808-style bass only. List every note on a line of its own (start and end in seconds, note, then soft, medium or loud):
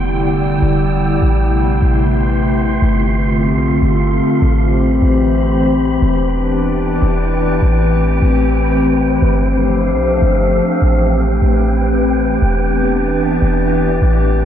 0.00 0.58 E1 loud
0.62 1.20 E1 loud
1.22 1.80 A1 loud
1.82 2.78 A1 loud
2.82 3.54 G1 loud
3.52 3.81 B1 loud
3.82 4.21 G1 loud
4.42 5.00 A1 loud
5.02 5.98 A1 loud
6.02 6.98 E1 loud
7.02 7.60 E1 loud
7.62 8.20 A1 loud
8.22 9.18 A1 loud
9.22 9.94 G1 loud
9.92 10.21 B1 loud
10.22 10.61 G1 loud
10.82 11.40 A1 loud
11.42 12.38 A1 loud
12.42 13.38 E1 loud
13.42 14.00 E1 loud
14.02 14.45 A1 loud